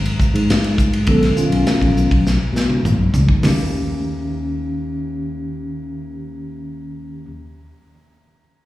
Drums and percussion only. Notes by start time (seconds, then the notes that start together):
0.05 ride
0.20 kick, hi-hat pedal
0.35 ride
0.50 snare, hi-hat pedal, ride
0.64 ride
0.78 kick, hi-hat pedal
0.93 ride
1.07 kick, hi-hat pedal, ride
1.23 snare, ride
1.37 hi-hat pedal
1.52 ride
1.67 snare, hi-hat pedal, ride
1.82 kick, ride
1.97 hi-hat pedal
2.11 kick, ride
2.26 snare, hi-hat pedal
2.56 snare, hi-hat pedal
2.70 mid tom
2.85 hi-hat pedal, mid tom
3.14 floor tom, hi-hat pedal
3.29 kick
3.43 snare, floor tom, open hi-hat